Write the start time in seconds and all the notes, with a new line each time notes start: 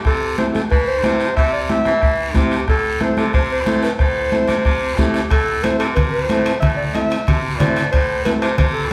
0.05 C3 A4, bombo low, bombo rim, long guiro
0.38 C4 E4 G4 C5, bombo rim, high conga, short guiro
0.55 A4, bombo rim, high conga, short guiro
0.70 E3 B4, bombo low, bombo rim, long guiro
0.87 C5
1.04 C3 C4 E4 G4, bombo rim, high conga, short guiro
1.20 bombo rim, short guiro
1.36 C3 E5, bombo low, bombo rim, long guiro
1.53 D5
1.69 C4 E4 G4 E5, bombo rim, high conga, short guiro
1.85 E3, bombo rim, high conga, short guiro
2.02 E3, bombo low, bombo rim, long guiro
2.34 C3 C4 E4 G4, bombo low, bombo rim, high conga, short guiro
2.51 bombo rim, short guiro
2.68 A2 A4, bombo low, bombo rim, long guiro
3.00 C4 E4 A4 C5, bombo rim, high conga, short guiro
3.17 C3 A4, bombo rim, high conga, short guiro
3.33 C3 C5, bombo low, bombo rim, long guiro
3.52 C5
3.66 A2 C4 E4 A4, bombo rim, high conga, short guiro
3.83 B4, bombo rim, short guiro
3.99 A2 C5, bombo low, bombo rim, long guiro
4.32 C4 E4 A4, bombo rim, high conga, short guiro
4.48 C3, bombo rim, high conga, short guiro
4.65 C3, bombo low, bombo rim, long guiro
4.97 A2 C4 E4 G4 A4, bombo low, bombo rim, high conga, short guiro
5.14 bombo rim, short guiro
5.30 A2 A4, bombo low, bombo rim, high timbale, long guiro
5.63 C4 E4 A4 C5, bombo rim, high conga, high timbale, short guiro
5.79 C3 A4, bombo rim, high timbale, short guiro
5.95 C3 B4, bombo low, bombo rim, low conga, high timbale, long guiro
6.11 C5
6.28 A2 C4 E4 A4, bombo rim, high conga, high timbale, short guiro
6.46 bombo rim, high timbale, short guiro
6.60 A2 E5, bombo low, bombo rim, low conga, high timbale, long guiro
6.77 D5
6.93 C4 E4 A4 E5, bombo rim, high conga, high timbale, short guiro
7.10 bombo rim, high timbale, short guiro
7.27 C3, bombo low, bombo rim, low conga, high timbale, long guiro
7.59 A2 C4 E4 C5 D5, bombo rim, high conga, low conga, high timbale, low timbale, short guiro
7.76 bombo rim, high timbale, short guiro
7.92 A2 C5, bombo low, bombo rim, high timbale, long guiro
8.25 C4 E4 A4 B4, bombo rim, high conga, high timbale, short guiro
8.41 C3 C5, bombo rim, high timbale, short guiro
8.58 C3 C5, bombo low, bombo rim, low conga, high timbale, long guiro
8.73 A4